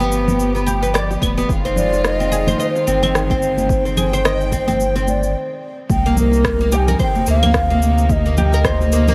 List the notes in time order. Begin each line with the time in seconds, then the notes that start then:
Already playing: G1 F3 B3 G4 G5
0.00 B3, shaker
0.12 high bongo, shaker
0.28 high conga, low conga, shaker
0.40 shaker
0.55 B3, high bongo, shaker
0.66 G4, high conga, shaker
0.82 B4, shaker
0.94 D5, cross-stick, shaker
1.11 high bongo, shaker
1.21 D1 B3, kick, high conga, claves, shaker
1.38 B3, high bongo, shaker
1.49 F1 D#3 G#3 F4, kick, shaker
1.65 C4, shaker
1.76 D5, low conga, shaker
1.92 high bongo, shaker
2.04 D#5, cross-stick, shaker
2.20 C4, shaker
2.32 G#4, shaker
2.47 C5, high conga, low conga, shaker
2.59 C5 D#5, high conga, shaker
2.75 high bongo, shaker
2.87 G1 C4, shaker
3.03 C4, low conga, claves, shaker
3.15 cross-stick, shaker
3.30 C4, kick, shaker
3.42 shaker
3.57 high conga, shaker
3.69 G5, kick, shaker
3.85 C4, shaker
3.97 G#4, low conga, claves, shaker
4.12 C5, high bongo, shaker
4.25 D#5, cross-stick, shaker
4.41 shaker
4.51 C4, kick, high bongo, shaker
4.67 C4, high conga, low conga, shaker
4.80 shaker
4.95 C4, high bongo, shaker
5.07 D5, high conga, shaker
5.23 shaker
5.89 C2 C3 A#3 D#4 G5, kick, high conga, shaker
6.05 A#3, high conga, shaker
6.16 A#4, low conga, shaker
6.32 high bongo, shaker
6.45 kick, cross-stick, shaker
6.59 A#3, high conga, shaker
6.72 G4 G#5, shaker
6.88 A#4, low conga, shaker
6.99 C5 G5, kick, shaker
7.15 high bongo, high conga, shaker
7.26 D2 A#3 F5, shaker
7.43 A#3, low conga, claves, shaker
7.54 kick, cross-stick, shaker
7.70 A#3, high conga, shaker
7.82 shaker
7.98 shaker
8.09 D#5, kick, high conga, shaker
8.26 A#3, high conga, shaker
8.37 G4, low conga, shaker
8.52 A#4, high bongo, shaker
8.64 C5, kick, cross-stick, shaker
8.80 high conga, shaker
8.92 A#3, high bongo, shaker
9.07 A#3, low conga, shaker